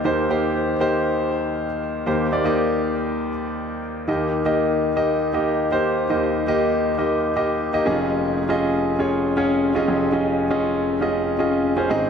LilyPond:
<<
  \new Staff \with { instrumentName = "Grand piano" } { \time 4/4 \key ees \major \tempo 4 = 119 <bes ees' g' c''>8 <bes ees' g' c''>8. r16 <bes ees' g' c''>4.~ <bes ees' g' c''>16 r8. | <bes ees' g' c''>8 <bes ees' g' d''>16 <bes ees' g' ees''>4.~ <bes ees' g' ees''>16 r4. | <bes ees' g' ees''>8. <bes ees' g' ees''>8. r16 <bes ees' g' ees''>8. <bes ees' g' ees''>8. <bes ees' g' c''>8. | <bes ees' g' ees''>8. <bes ees' g' ees''>8. r16 <bes ees' g' ees''>8. <bes ees' g' ees''>8. <bes ees' g' ees''>16 <des' ees' f' aes' ees''>8~ |
<des' ees' f' aes' ees''>8 r16 <des' f' aes' ees''>8. r16 <des' f' aes' des''>8. <des' f' aes' des''>8. <des' f' aes' ees''>8. | <des' f' aes' ees''>8. <des' f' aes' ees''>8. r16 <des' f' aes' ees''>8. <des' f' aes' ees''>8. <des' f' aes' c''>16 <c' ees' aes' ees''>8 | }
  \new Staff \with { instrumentName = "Grand piano" } { \clef bass \time 4/4 \key ees \major <ees, ees>1 | <ees, ees>1 | <ees, ees>1 | <ees, ees>2.~ <ees, ees>8 <f,, f,>8~ |
<f,, f,>2.~ <f,, f,>8 <f,, f,>8~ | <f,, f,>2.~ <f,, f,>8 <aes,, aes,>8 | }
>>